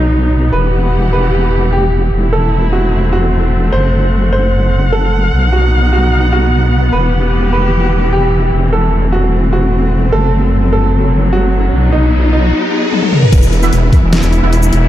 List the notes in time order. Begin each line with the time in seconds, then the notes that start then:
Already playing: B1 F#3 B3 D#4
0.53 E1 E3 G4 B4 F#5
1.13 B4
1.73 G4
2.12 E1 A3 C4 E4
2.33 A4
2.73 F#4
3.13 F#4
3.72 F#1 C5 F#5
4.33 C5
4.92 A4
5.33 B1 B3 D#4
5.53 F#4
5.93 F#4
6.33 F#4
6.93 E1 E3 G4 B4
7.53 B4
8.13 G4
8.53 E1 A3 C4
8.73 A4
9.12 F#4
9.53 F#4
10.12 F#1 F#3 A4, riser
10.73 A4
11.33 F#4
11.73 B1 B3 D#4
11.93 D#4
12.32 D#4
12.93 high tom
13.03 high tom
13.13 mid tom
13.23 mid tom
13.32 E1 E3 B3 E4, kick, closed hi-hat, crash
13.43 shaker
13.53 closed hi-hat
13.63 E3 B3 E4, shaker
13.73 E1, closed hi-hat
13.93 E2, kick, open hi-hat
14.03 E1
14.13 snare, closed hi-hat
14.23 E1, shaker
14.33 closed hi-hat
14.43 E1 E3 B3 E4
14.53 closed hi-hat
14.63 shaker
14.73 E1, open hi-hat